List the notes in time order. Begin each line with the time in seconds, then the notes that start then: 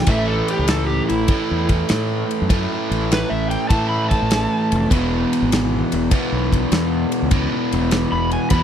0.06 A1 A2 E3 A3 E5, kick, ride, splash
0.27 A4
0.48 G4, ride
0.59 C#2
0.68 A4, snare, ride
0.87 G4
1.09 A1 E4, ride
1.28 A2 E3 A3, kick, ride
1.51 E2
1.69 kick, ride
1.89 A2, snare, ride
2.31 ride
2.42 F#2
2.49 A2 E3 A3, kick, ride
2.91 A1, ride
3.12 B4, snare, ride
3.30 A1 E5
3.50 G5, ride
3.69 A2 E3 A3 A5, kick, ride
3.89 B5
4.09 A5, kick, ride
4.22 A1
4.31 snare, ride
4.72 F1, ride
4.90 E1 E2 B2 E3, kick, ride
5.33 ride
5.42 G#1
5.52 snare, ride
5.92 E1, ride
6.11 E2 B2 E3, kick, ride
6.32 B1
6.52 kick, ride
6.72 E2, snare, ride
7.12 ride
7.22 C#2
7.31 E2 B2 E3, kick, ride
7.72 E1, ride
7.91 snare, ride
8.12 E1 B5
8.31 G#5, ride
8.50 E2 B2 E3 B5, kick, ride